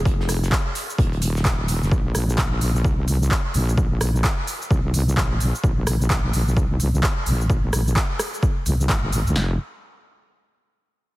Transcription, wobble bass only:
X:1
M:4/4
L:1/16
Q:"Swing 16ths" 1/4=129
K:Bbdor
V:1 name="Wobble bass" clef=bass
F,,,4 z4 E,,,4 E,,,3 F,,, | B,,,4 B,,,4 C,,4 z2 B,,,2 | B,,,4 z4 C,,4 B,,,3 z | B,,,4 B,,,4 C,,4 z2 B,,,2 |
B,,,4 z6 C,,2 A,,,3 D,, | F,,,2 z12 z2 |]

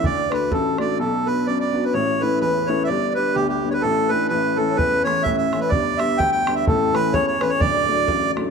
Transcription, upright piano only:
X:1
M:2/4
L:1/8
Q:"Swing" 1/4=127
K:Amix
V:1 name="Upright piano"
D,, [A,DF] A,,, [A,DF] | [B,,,B,,] [B,DF] F,, [B,DF] | [A,,,A,,] [A,CE] E,, [A,CE] | [G,,,G,,] [G,B,D] D,, [G,B,D] |
[A,,,A,,] [E,A,D] [A,,,A,,] [E,A,C] | E,, [E,A,C] [A,,,A,,] [E,A,C] | [G,,,G,,] [G,B,D] D,, [G,B,D] | [A,,,A,,] [E,A,C] E,, [E,A,C] |
[D,,,D,,] [F,A,D] A,,, [F,A,D] |]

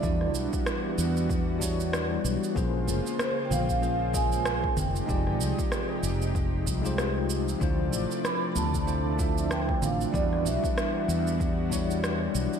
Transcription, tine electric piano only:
X:1
M:4/4
L:1/16
Q:"Swing 16ths" 1/4=95
K:Em
V:1 name="Tine electric piano"
[G,DEFd]8- [G,DEFd]2 [G,DEF^c]6 | [_B,_D=F_Ac]8 [B,DFAc] z [B,DFA^d]4 z2 | [_A,_E=FGd]8- [A,EFGd]2 z [A,EFGc]4- [A,EFGc] | [A,DE=Fc]8 [A,DEFc] z [A,DEFe]6 |
[G,DEFd]8- [G,DEFd]2 [G,DEF^c]6 |]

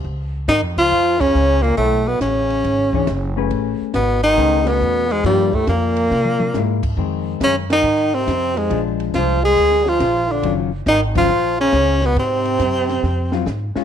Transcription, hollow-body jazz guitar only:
X:1
M:4/4
L:1/8
Q:"Swing" 1/4=139
K:Db
V:1 name="Hollow-body jazz guitar"
z8 | z4 z [=E,=D^G^c] z [=A,^CG=B]- | [=A,^C^G=B]2 z2 [A,CGB]3 z | [F,B,=D] z4 z [^G,B,=E] z |
[E,A,C]3 z4 z | [F,A,=D]3 z4 z | [E,G,DF] z2 [E,G,DF] z4 | z4 z [G,CF] z [A,DF] |]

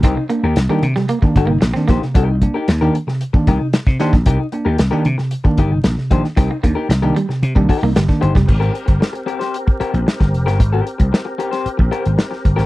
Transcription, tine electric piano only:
X:1
M:4/4
L:1/16
Q:1/4=114
K:Cm
V:1 name="Tine electric piano"
C, z [B,D] z2 [E,B,D] z C, z [E,B,D] z C, z [E,B,D] z C, | C, z [B,D] z2 [E,B,D] z C, z [E,B,D] z C, z2 [E,B,D] z | C, z [B,D] z2 [E,B,D] z C, z [E,B,D] z C, [B,D] C, [E,B,D] z | C, z [B,D] z2 [E,B,D] z C, z [E,B,D] z C, z [E,B,D] z C, |
z16 | z16 |]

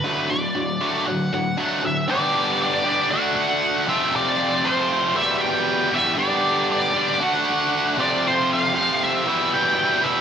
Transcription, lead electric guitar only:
X:1
M:4/4
L:1/8
Q:1/4=117
K:G
V:1 name="Lead electric guitar"
B d3 f f2 e | d2 d2 f f2 e | d2 c2 e g2 e | d2 d2 f3 d |
c =f2 e2 g2 e |]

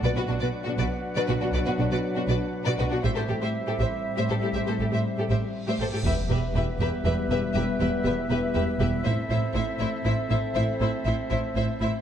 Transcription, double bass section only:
X:1
M:3/4
L:1/16
Q:1/4=120
K:Ador
V:1 name="Double bass section" clef=bass
B,,, z B,,, z3 B,,, z3 B,,, z | B,,, z B,,, z3 B,,, z3 B,,, z | A,,, z A,,, z3 A,,, z3 A,,, z | A,,, z A,,, z3 A,,, z3 A,,, z |
[K:Ephr] E,,,2 E,,,2 E,,,2 E,,,2 E,,,2 E,,,2 | E,,,2 E,,,2 E,,,2 E,,,2 E,,,2 E,,,2 | A,,,2 A,,,2 A,,,2 A,,,2 A,,,2 A,,,2 | A,,,2 A,,,2 A,,,2 A,,,2 A,,,2 A,,,2 |]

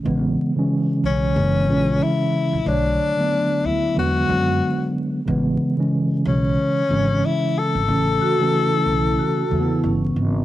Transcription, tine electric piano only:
X:1
M:4/4
L:1/16
Q:"Swing 16ths" 1/4=92
K:A
V:1 name="Tine electric piano" clef=bass
[C,E,G,B,]3 [C,E,G,C]4- [C,E,G,C] [C,E,G,^A,]2 [C,E,G,C]4- [C,E,G,C] z | [D,F,A,c]3 [D,F,A,B,]4- [D,F,A,B,] [D,F,G,B,]2 [D,F,G,B,]4- [D,F,G,B,] z | [C,E,G,B,]3 [C,E,G,C]6 z [C,E,G,C]4- [C,E,G,C] z | [C,E,A,C]3 [C,E,A,C]6 z [C,E,A,B,]4- [C,E,A,B,] z |]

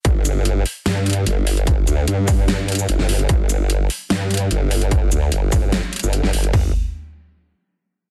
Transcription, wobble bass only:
X:1
M:4/4
L:1/16
Q:1/4=148
K:Cdor
V:1 name="Wobble bass" clef=bass
G,,,6 z2 G,,4 G,,,4- | G,,,2 D,,2 G,,8 G,,, G,,,3 | G,,,6 z2 G,,4 G,,,4- | G,,,2 D,,2 G,,,2 G,,,3 z2 G,,,2 G,,, G,,,2 |
G,,,2 z12 z2 |]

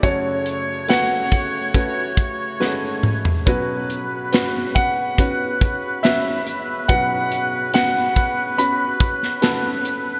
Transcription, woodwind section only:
X:1
M:4/4
L:1/8
Q:1/4=70
K:F#phr
V:1 name="Woodwind section"
[C,A,Fc]8 | [C,B,FB]8- | [C,B,FB]8 |]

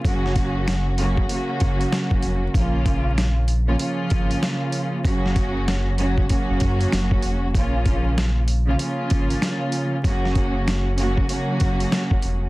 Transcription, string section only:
X:1
M:4/4
L:1/16
Q:"Swing 16ths" 1/4=96
K:Gblyd
V:1 name="String section"
[D,G,B,DG]6 [D,G,B,DG]2 [D,G,B,DG]6- [D,G,B,DG] z | [D,F,B,DF]6 z [D,F,B,DF] [D,F,B,DF]6- [D,F,B,DF] z | [D,G,B,DG]6 [D,G,B,DG]2 [D,G,B,DG]6- [D,G,B,DG] z | [D,F,B,DF]6 z [D,F,B,DF] [D,F,B,DF]6- [D,F,B,DF] z |
[D,G,B,DG]6 [D,G,B,DG]2 [D,G,B,DG]6- [D,G,B,DG] z |]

